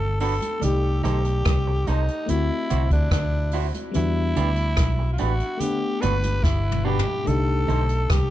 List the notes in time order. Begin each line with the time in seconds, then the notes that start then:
Already playing: G1 A3 B3 D4 A4 F#5
0.20 D4 F#4 A4 B4, open hi-hat
0.42 closed hi-hat, high conga
0.60 A3 D#4 D5, closed hi-hat, low conga
0.64 C2 G4
1.03 B1 D#4 G4 A4 C5, closed hi-hat, low conga
1.25 closed hi-hat
1.45 C2, kick, cross-stick, closed hi-hat, high conga
1.67 muted clean electric guitar stroke
1.87 C2 D#4 A4 C5, closed hi-hat, high conga
2.08 closed hi-hat
2.26 D2 A3 C4 E4, closed hi-hat, low conga
2.30 E4 F#4
2.70 C2 E4 F#4 C5, closed hi-hat, low conga
2.91 D2 D4, kick, closed hi-hat
3.11 D2 D4, kick, cross-stick, closed hi-hat
3.51 E4 F#4 C5, open hi-hat
3.74 closed hi-hat, high conga
3.91 G3 B3 D4, closed hi-hat, low conga
3.96 E2 E4 F#4
4.36 D2 D4 G4 B4, closed hi-hat, low conga
4.56 closed hi-hat
4.77 B1, kick, cross-stick, closed hi-hat, high conga
4.99 muted clean electric guitar stroke
5.13 F4
5.18 A1 D4 F#4 G4 B4, closed hi-hat, high conga
5.40 closed hi-hat
5.57 A3 B3 G4, closed hi-hat, low conga
5.62 D4 F#5
6.01 G1 D4 F#4 B4, closed hi-hat, high conga, low conga
6.23 closed hi-hat, high conga
6.43 G1 E4, kick, snare
6.72 mid tom
6.85 D4 F#4 G4 B4
6.99 floor tom
7.07 high conga
7.25 C2 A3 D4 D#4 A4, closed hi-hat, low conga
7.31 G4
7.68 B1 D#4 A4 C5, closed hi-hat, low conga
7.89 closed hi-hat
8.10 C2 G4, kick, cross-stick, closed hi-hat, high conga